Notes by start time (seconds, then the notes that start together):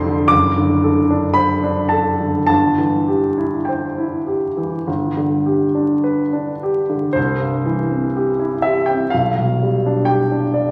Already playing: F1 F2 D3 D4 A4 C5 B5 C6
0.06 D3
0.28 F#1 D6
0.57 D3
0.84 A4
1.10 D4
1.33 C5 B5
1.64 D4
1.89 A4 A5
2.20 D3
2.47 G1 A5
2.78 E3
3.08 G4
3.38 E4
3.65 C5 G5
3.98 E4
4.27 G4
4.57 E3
4.87 G1
5.17 D3
5.46 G4
5.75 D4
6.04 B4
6.33 D4
6.63 G4
6.90 D3
7.13 C2 C5
7.40 G2
7.66 E3
7.91 C4
8.16 G4
8.39 E4
8.62 G4 E5
8.86 C4 G5
9.10 B1 F5
9.39 B2
9.63 G3
9.86 D4
10.05 G4 G5
10.31 D4
10.54 D5